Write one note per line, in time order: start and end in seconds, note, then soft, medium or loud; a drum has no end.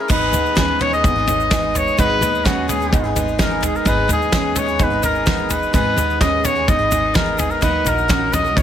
0.01 0.10 A#4 medium
0.08 1.93 G#1 medium
0.08 0.31 G#1 medium
0.08 0.32 G#2 medium
0.08 1.94 G#2 medium
0.08 0.32 D#3 medium
0.08 0.30 G#3 medium
0.08 0.27 G#3 medium
0.08 0.31 B3 medium
0.08 0.27 B3 medium
0.08 0.27 D#4 medium
0.08 0.56 D#4 medium
0.08 0.32 D#4 medium
0.08 0.33 G#4 medium
0.08 0.27 B4 medium
0.08 0.54 B4 loud
0.08 0.27 D#5 medium
0.08 kick loud
0.08 floor tom medium
0.08 crash loud
0.08 shaker medium
0.31 1.06 D#2 medium
0.31 0.55 G#3 medium
0.31 0.50 G#3 medium
0.31 0.56 B3 medium
0.31 0.50 B3 medium
0.31 0.50 D#4 medium
0.31 0.55 D#4 medium
0.31 0.56 G#4 medium
0.31 0.51 B4 medium
0.31 0.51 F#5 medium
0.31 floor tom medium
0.31 shaker medium
0.46 shaker soft
0.55 0.79 G#2 medium
0.55 0.79 D#3 medium
0.55 0.78 G#3 medium
0.55 0.74 G#3 medium
0.55 0.74 B3 medium
0.55 0.79 B3 medium
0.55 1.03 C#4 medium
0.55 0.80 D#4 medium
0.55 0.74 D#4 medium
0.55 0.80 G#4 medium
0.55 0.74 B4 medium
0.55 0.83 B4 loud
0.55 0.74 C#5 medium
0.55 kick loud
0.55 snare loud
0.55 floor tom medium
0.55 shaker medium
0.79 0.91 G#3 medium
0.79 0.98 G#3 medium
0.79 0.98 B3 medium
0.79 0.92 B3 medium
0.79 0.98 D#4 medium
0.79 0.92 D#4 medium
0.79 0.92 G#4 medium
0.79 0.98 B4 medium
0.79 0.92 C#5 medium
0.79 0.98 D#5 medium
0.79 floor tom medium
0.93 1.17 G#3 soft
0.93 1.17 B3 soft
0.93 1.16 D#4 medium
0.93 1.14 G#4 medium
0.93 1.78 D#5 loud
0.93 shaker soft
1.03 1.88 G#1 medium
1.03 1.21 G#3 medium
1.03 1.21 B3 medium
1.03 1.21 D#4 medium
1.03 1.50 D#4 medium
1.03 1.21 B4 medium
1.03 1.21 F#5 medium
1.03 kick loud
1.03 floor tom medium
1.03 shaker medium
1.16 1.26 G#3 soft
1.16 1.27 B3 soft
1.16 1.28 D#4 soft
1.16 1.27 G#4 medium
1.27 1.50 G#3 medium
1.27 1.45 G#3 medium
1.27 1.45 B3 medium
1.27 1.51 B3 medium
1.27 1.45 D#4 medium
1.27 1.51 D#4 medium
1.27 1.51 G#4 medium
1.27 1.45 B4 medium
1.27 1.45 C#5 medium
1.27 floor tom medium
1.27 shaker medium
1.40 shaker soft
1.51 1.62 G#2 medium
1.51 1.62 D#3 medium
1.51 1.68 G#3 loud
1.51 1.63 G#3 medium
1.51 1.68 B3 loud
1.51 1.62 B3 medium
1.51 1.68 D#4 loud
1.51 1.97 D#4 medium
1.51 1.61 D#4 medium
1.51 1.60 G#4 medium
1.51 1.68 B4 loud
1.51 1.68 D#5 loud
1.51 kick loud
1.51 snare loud
1.51 floor tom medium
1.51 shaker medium
1.61 1.73 G#3 soft
1.61 1.74 B3 soft
1.61 1.74 D#4 soft
1.61 1.73 G#4 medium
1.74 1.91 G#3 medium
1.74 1.97 G#3 medium
1.74 1.92 B3 medium
1.74 1.98 B3 medium
1.74 1.91 D#4 medium
1.74 1.98 D#4 medium
1.74 1.99 G#4 medium
1.74 1.92 B4 medium
1.74 1.98 C#5 medium
1.74 1.92 D#5 medium
1.74 floor tom medium
1.74 shaker loud
1.87 shaker soft
1.97 2.19 G#1 medium
1.97 3.82 G#1 medium
1.97 2.21 G#2 medium
1.97 3.82 G#2 medium
1.97 2.21 D#3 medium
1.97 2.15 G#3 medium
1.97 2.21 G#3 medium
1.97 2.15 B3 medium
1.97 2.22 B3 medium
1.97 2.15 D#4 medium
1.97 2.44 D#4 loud
1.97 2.22 D#4 medium
1.97 2.22 G#4 medium
1.97 2.15 B4 medium
1.97 2.47 B4 loud
1.97 2.16 F#5 loud
1.97 kick loud
1.97 floor tom medium
1.97 shaker medium
2.21 2.94 D#2 loud
2.21 2.45 G#3 medium
2.21 2.39 G#3 medium
2.21 2.39 B3 medium
2.21 2.45 B3 medium
2.21 2.39 D#4 medium
2.21 2.46 D#4 medium
2.21 2.46 G#4 medium
2.21 2.39 B4 medium
2.21 2.39 D#5 medium
2.21 floor tom medium
2.21 shaker medium
2.35 shaker soft
2.45 2.68 G#2 medium
2.45 2.68 D#3 medium
2.45 2.62 G#3 medium
2.45 2.67 G#3 medium
2.45 2.62 B3 medium
2.45 2.68 B3 medium
2.45 2.91 C#4 medium
2.45 2.63 D#4 medium
2.45 2.69 D#4 medium
2.45 2.67 F#4 medium
2.45 2.69 G#4 medium
2.45 2.62 B4 medium
2.45 2.63 F#5 loud
2.45 kick loud
2.45 snare loud
2.45 floor tom medium
2.45 shaker medium
2.68 2.80 G#3 medium
2.68 2.86 G#3 medium
2.68 2.80 B3 medium
2.68 2.86 B3 medium
2.68 2.86 D#4 medium
2.68 2.80 D#4 medium
2.68 3.12 G#4 medium
2.68 2.79 G#4 medium
2.68 2.86 B4 medium
2.68 2.86 C#5 medium
2.68 floor tom medium
2.68 shaker loud
2.80 3.05 G#3 soft
2.80 3.05 B3 soft
2.80 3.04 D#4 medium
2.80 3.03 G#4 medium
2.80 shaker soft
2.92 3.76 G#1 medium
2.92 3.10 G#3 medium
2.92 3.10 B3 medium
2.92 3.09 D#4 medium
2.92 3.38 D#4 medium
2.92 3.10 B4 medium
2.92 3.10 F#5 medium
2.92 kick loud
2.92 floor tom medium
2.92 shaker medium
3.04 3.14 G#3 soft
3.04 3.15 B3 soft
3.04 3.16 D#4 soft
3.04 3.15 G#4 medium
3.15 3.33 G#3 medium
3.15 3.38 G#3 medium
3.15 3.33 B3 medium
3.15 3.39 B3 medium
3.15 3.33 D#4 medium
3.15 3.39 D#4 medium
3.15 3.39 G#4 medium
3.15 3.33 B4 medium
3.15 3.33 D#5 medium
3.15 floor tom medium
3.15 shaker medium
3.28 shaker soft
3.38 3.50 G#2 medium
3.38 3.51 D#3 medium
3.38 3.56 G#3 medium
3.38 3.51 G#3 medium
3.38 3.56 B3 medium
3.38 3.50 B3 medium
3.38 3.56 D#4 medium
3.38 3.84 D#4 medium
3.38 3.49 D#4 medium
3.38 3.48 G#4 medium
3.38 3.62 A#4 medium
3.38 3.56 B4 medium
3.38 3.56 D#5 loud
3.38 kick loud
3.38 snare loud
3.38 floor tom medium
3.38 shaker medium
3.49 3.59 G#3 soft
3.49 3.61 B3 soft
3.49 3.62 D#4 medium
3.49 3.61 G#4 soft
3.61 3.85 G#3 medium
3.61 3.80 G#3 medium
3.61 3.85 B3 medium
3.61 3.80 B3 medium
3.61 3.80 D#4 medium
3.61 3.86 D#4 medium
3.61 3.86 G#4 medium
3.61 3.80 B4 medium
3.61 3.80 D#5 medium
3.61 floor tom medium
3.61 shaker medium
3.65 3.77 G#4 medium
3.75 3.89 A#4 medium
3.75 shaker soft
3.85 4.06 G#1 loud
3.85 5.70 G#1 medium
3.85 4.09 G#2 medium
3.85 5.70 G#2 medium
3.85 4.09 D#3 medium
3.85 4.03 G#3 medium
3.85 4.06 G#3 medium
3.85 4.03 B3 medium
3.85 4.08 B3 medium
3.85 4.03 D#4 medium
3.85 4.32 D#4 loud
3.85 4.09 D#4 medium
3.85 4.10 G#4 medium
3.85 4.03 B4 medium
3.85 4.10 B4 medium
3.85 4.03 D#5 loud
3.85 kick loud
3.85 floor tom medium
3.85 shaker medium
4.08 4.81 D#2 loud
4.08 4.32 G#3 medium
4.08 4.27 G#3 medium
4.08 4.32 B3 medium
4.08 4.27 B3 medium
4.08 4.27 D#4 medium
4.08 4.32 D#4 medium
4.08 4.33 G#4 medium
4.08 4.27 B4 medium
4.08 4.27 D#5 medium
4.08 floor tom medium
4.08 shaker medium
4.12 4.59 G#4 medium
4.22 shaker soft
4.32 4.56 G#2 medium
4.32 4.56 D#3 medium
4.32 4.50 G#3 medium
4.32 4.54 G#3 medium
4.32 4.50 B3 medium
4.32 4.55 B3 medium
4.32 4.79 C#4 medium
4.32 4.50 D#4 medium
4.32 4.56 D#4 medium
4.32 4.57 G#4 medium
4.32 4.50 B4 medium
4.32 4.50 D#5 loud
4.32 kick loud
4.32 snare loud
4.32 floor tom medium
4.32 shaker medium
4.55 4.67 G#3 medium
4.55 4.74 G#3 medium
4.55 4.67 B3 medium
4.55 4.74 B3 medium
4.55 4.74 D#4 medium
4.55 4.66 D#4 medium
4.55 4.65 G#4 medium
4.55 4.84 C#5 medium
4.55 4.74 D#5 medium
4.55 floor tom medium
4.55 shaker loud
4.66 4.92 G#3 soft
4.66 4.91 B3 soft
4.66 4.90 D#4 soft
4.66 4.89 G#4 medium
4.66 shaker soft
4.79 5.63 G#1 medium
4.79 4.97 G#3 medium
4.79 4.97 B3 medium
4.79 4.97 D#4 medium
4.79 5.25 D#4 medium
4.79 4.97 B4 medium
4.79 5.03 B4 medium
4.79 4.97 F#5 medium
4.79 kick loud
4.79 floor tom medium
4.79 shaker medium
4.90 5.01 G#3 soft
4.90 5.02 B3 medium
4.90 5.03 D#4 soft
4.90 5.02 G#4 medium
5.02 5.20 G#3 medium
5.02 5.25 G#3 medium
5.02 5.20 B3 medium
5.02 5.26 B3 medium
5.02 5.20 D#4 medium
5.02 5.26 D#4 medium
5.02 5.26 G#4 medium
5.02 5.53 A#4 medium
5.02 5.20 B4 medium
5.02 5.20 D#5 medium
5.02 floor tom medium
5.02 shaker medium
5.15 shaker soft
5.26 5.38 G#2 medium
5.26 5.38 D#3 medium
5.26 5.44 G#3 medium
5.26 5.38 G#3 medium
5.26 5.44 B3 medium
5.26 5.38 B3 medium
5.26 5.44 D#4 medium
5.26 5.72 D#4 medium
5.26 5.37 D#4 medium
5.26 5.35 G#4 medium
5.26 5.44 B4 medium
5.26 5.44 F#5 loud
5.26 kick loud
5.26 snare loud
5.26 floor tom medium
5.26 shaker medium
5.37 5.48 G#3 soft
5.37 5.49 B3 soft
5.37 5.49 D#4 soft
5.37 5.49 G#4 soft
5.49 5.72 G#3 medium
5.49 5.67 G#3 medium
5.49 5.67 B3 medium
5.49 5.73 B3 medium
5.49 5.68 D#4 medium
5.49 5.74 D#4 medium
5.49 5.74 G#4 medium
5.49 5.73 B4 medium
5.49 5.68 D#5 medium
5.49 floor tom medium
5.49 shaker loud
5.63 shaker soft
5.72 7.57 G#1 medium
5.72 5.95 G#1 loud
5.72 7.57 G#2 medium
5.72 5.97 G#2 medium
5.72 5.97 D#3 medium
5.72 5.91 G#3 medium
5.72 5.95 G#3 medium
5.72 5.91 B3 medium
5.72 5.97 B3 medium
5.72 5.91 D#4 medium
5.72 6.20 D#4 medium
5.72 5.97 D#4 medium
5.72 5.98 G#4 medium
5.72 5.91 B4 medium
5.72 6.17 B4 loud
5.72 5.91 D#5 loud
5.72 kick loud
5.72 floor tom medium
5.72 shaker medium
5.96 6.69 D#2 medium
5.96 6.14 G#3 medium
5.96 6.20 G#3 medium
5.96 6.14 B3 medium
5.96 6.21 B3 medium
5.96 6.14 D#4 medium
5.96 6.21 D#4 medium
5.96 6.21 G#4 medium
5.96 6.14 D#5 medium
5.96 floor tom medium
5.96 shaker loud
6.10 shaker soft
6.20 6.44 G#2 medium
6.20 6.44 D#3 medium
6.20 6.38 G#3 medium
6.20 6.43 G#3 medium
6.20 6.38 B3 medium
6.20 6.44 B3 medium
6.20 6.67 C#4 medium
6.20 6.38 D#4 medium
6.20 6.45 D#4 medium
6.20 6.45 G#4 medium
6.20 6.38 B4 medium
6.20 6.46 D#5 loud
6.20 6.38 D#5 loud
6.20 kick loud
6.20 snare loud
6.20 floor tom medium
6.20 shaker medium
6.42 6.61 G#3 medium
6.42 6.56 G#3 medium
6.42 6.61 B3 medium
6.42 6.56 B3 medium
6.42 6.61 D#4 medium
6.42 6.55 D#4 medium
6.42 6.61 B4 medium
6.42 6.70 C#5 medium
6.42 6.61 F#5 medium
6.42 floor tom medium
6.42 shaker loud
6.47 6.54 G#4 medium
6.55 6.81 G#3 soft
6.55 6.80 B3 soft
6.55 6.78 D#4 soft
6.55 6.77 G#4 medium
6.67 7.52 G#1 medium
6.67 6.85 G#3 medium
6.67 6.85 B3 medium
6.67 6.85 D#4 medium
6.67 7.14 D#4 medium
6.67 6.85 B4 medium
6.67 7.17 D#5 loud
6.67 kick loud
6.67 floor tom medium
6.67 shaker medium
6.79 6.89 G#3 soft
6.79 6.90 B3 soft
6.79 6.91 D#4 soft
6.79 6.91 G#4 medium
6.90 7.14 G#3 medium
6.90 7.09 G#3 medium
6.90 7.09 B3 medium
6.90 7.14 B3 medium
6.90 7.08 D#4 medium
6.90 7.14 D#4 medium
6.90 7.15 G#4 medium
6.90 7.09 B4 medium
6.90 7.09 D#5 medium
6.90 floor tom medium
6.90 shaker loud
7.14 7.26 G#2 medium
7.14 7.26 D#3 medium
7.14 7.32 G#3 medium
7.14 7.27 G#3 medium
7.14 7.32 B3 medium
7.14 7.27 B3 medium
7.14 7.32 D#4 medium
7.14 7.61 D#4 medium
7.14 7.26 D#4 medium
7.14 7.25 G#4 medium
7.14 7.40 A#4 medium
7.14 7.32 B4 medium
7.14 7.32 D#5 loud
7.14 kick loud
7.14 snare loud
7.14 floor tom medium
7.14 shaker medium
7.26 7.36 G#3 soft
7.26 7.37 B3 soft
7.26 7.39 D#4 soft
7.26 7.38 G#4 soft
7.37 7.61 G#3 medium
7.37 7.56 G#3 medium
7.37 7.56 B3 medium
7.37 7.62 B3 medium
7.37 7.56 D#4 medium
7.37 7.61 D#4 medium
7.37 7.52 G#4 medium
7.37 7.62 G#4 medium
7.37 7.56 B4 medium
7.37 7.56 D#5 medium
7.37 floor tom medium
7.37 shaker loud
7.50 7.64 A#4 medium
7.50 shaker soft
7.61 8.62 D#2 medium
7.61 7.83 D#2 medium
7.61 7.85 D#3 medium
7.61 8.62 D#3 medium
7.61 7.83 F#3 medium
7.61 7.80 F#3 medium
7.61 7.80 A#3 medium
7.61 7.80 D#4 medium
7.61 7.85 D#4 medium
7.61 8.08 D#4 medium
7.61 7.86 F#4 medium
7.61 7.80 A#4 medium
7.61 7.86 A#4 medium
7.61 7.89 B4 loud
7.61 7.80 D#5 medium
7.61 kick loud
7.61 floor tom medium
7.61 shaker medium
7.85 8.57 A#1 medium
7.85 8.08 F#3 medium
7.85 8.03 F#3 medium
7.85 8.03 A#3 medium
7.85 8.08 D#4 medium
7.85 8.03 D#4 medium
7.85 8.09 F#4 medium
7.85 8.03 A#4 medium
7.85 8.35 A#4 medium
7.85 8.09 A#4 medium
7.85 8.03 F#5 medium
7.85 floor tom medium
7.85 shaker loud
7.98 shaker soft
8.08 8.32 D#3 medium
8.08 8.31 F#3 medium
8.08 8.27 F#3 loud
8.08 8.27 A#3 medium
8.08 8.55 C#4 medium
8.08 8.27 D#4 medium
8.08 8.32 D#4 medium
8.08 8.33 F#4 medium
8.08 8.27 A#4 medium
8.08 8.33 A#4 medium
8.08 8.27 F#5 loud
8.08 kick loud
8.08 snare loud
8.08 floor tom medium
8.08 shaker medium
8.32 8.44 F#3 medium
8.32 8.50 F#3 medium
8.32 8.50 A#3 medium
8.32 8.50 D#4 medium
8.32 8.45 D#4 medium
8.32 8.45 F#4 medium
8.32 8.50 A#4 medium
8.32 8.43 A#4 medium
8.32 8.50 D#5 medium
8.32 8.58 D#5 medium
8.32 floor tom medium
8.32 shaker loud
8.44 8.62 D#4 soft
8.44 8.62 F#4 soft
8.44 8.62 A#4 medium
8.44 shaker soft
8.56 8.62 D#2 medium
8.56 8.62 F#3 medium
8.56 8.62 A#3 medium
8.56 8.62 D#4 medium
8.56 8.62 A#4 medium
8.56 8.62 C#5 medium
8.56 8.62 D#5 medium
8.56 kick loud
8.56 floor tom medium
8.56 shaker medium